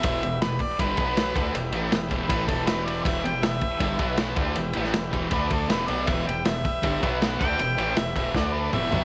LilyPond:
<<
  \new Staff \with { instrumentName = "Harmonica" } { \time 4/4 \key e \minor \tempo 4 = 159 e''4 b'8 d''8 b'2 | r2 b'8 a'8 b'8 d''8 | e''8 g''8 e''2 r4 | r2 b'8 a'8 b'8 d''8 |
e''8 g''8 e''2 r8 g''8~ | g''4 e''8 e''8 d''8 b'8 e''4 | }
  \new Staff \with { instrumentName = "Transistor combo organ" } { \time 4/4 \key e \minor <e' g' b'>2~ <e' g' b'>8 <b fis' b'>4 <e' g' b'>8~ | <e' g' b'>1~ | <e' g' b'>2~ <e' g' b'>8 <b fis' b'>4 <e' g' b'>8~ | <e' g' b'>2 <d' a' d''>4 <g' b' e''>4~ |
<g' b' e''>2~ <g' b' e''>8 <fis' b' fis''>4 <g' b' e''>8~ | <g' b' e''>2 <d' a' d''>4 <e' g' b'>4 | }
  \new Staff \with { instrumentName = "Distorted electric guitar" } { \clef bass \time 4/4 \key e \minor <e, b, e>8 <e, b,>8 <e, b,>8 r8 <g, d g>8 <b, fis b>4 <d a d'>8 | <e, b,>8 <a, e a>8 <e, b,>8 <e, b, e>8 <a, e a>8 <e, b, e>4. | <e, b, e>8 <e, b,>8 <e, b,>8 r8 <g, d g>8 <b, fis b>4 <d a d'>8 | <e, b,>8 <a, e a>8 <e, b,>8 <e, b, e>8 <d a d'>4 <e, b, e>8 <b, fis b>8 |
<e, b, e>8 <e, b,>8 <e, b,>8 r8 <g, d g>8 <b, fis b>4 <d a d'>8 | <e, b,>8 <a, e a>8 <e, b,>8 <e, b, e>8 <d a d'>4 <e, b, e>8 <b, fis b>8 | }
  \new Staff \with { instrumentName = "Analog synth bass" } { \clef bass \time 4/4 \key e \minor e,,8 e,,8 e,,8 e,,8 g,,8 b,,4 d,8 | e,,8 a,,8 r8 e,,8 a,,8 e,,4. | e,,8 e,,8 e,,8 e,,8 g,,8 b,,4 d,8 | e,,8 a,,8 e,,8 e,,8 d,4 e,,8 b,,8 |
e,,8 e,,8 e,,8 e,,8 g,,8 b,,4 d,8 | e,,8 a,,8 e,,8 e,,8 d,4 e,,8 b,,8 | }
  \new DrumStaff \with { instrumentName = "Drums" } \drummode { \time 4/4 <bd cymr>8 cymr8 <cymr sn>8 <bd cymr>8 <bd cymr>8 <bd cymr>8 <cymr sn>8 <bd cymr>8 | cymr8 cymr8 <cymr sn>8 <bd cymr>8 <bd cymr>8 <bd cymr>8 <cymr sn>8 cymr8 | <bd cymr>8 cymr8 <cymr sn>8 <bd cymr>8 <bd cymr>8 <bd cymr>8 <cymr sn>8 <bd cymr>8 | cymr8 cymr16 sn16 <cymr sn>8 <bd cymr>8 <bd cymr>8 <bd cymr>8 <cymr sn>8 cymr8 |
<bd cymr>8 cymr8 <cymr sn>8 <bd cymr>8 <bd cymr>8 <bd cymr>8 <cymr sn>8 <bd cymr>8 | cymr8 cymr8 <cymr sn>8 <bd cymr>8 <bd sn>4 toml8 tomfh8 | }
>>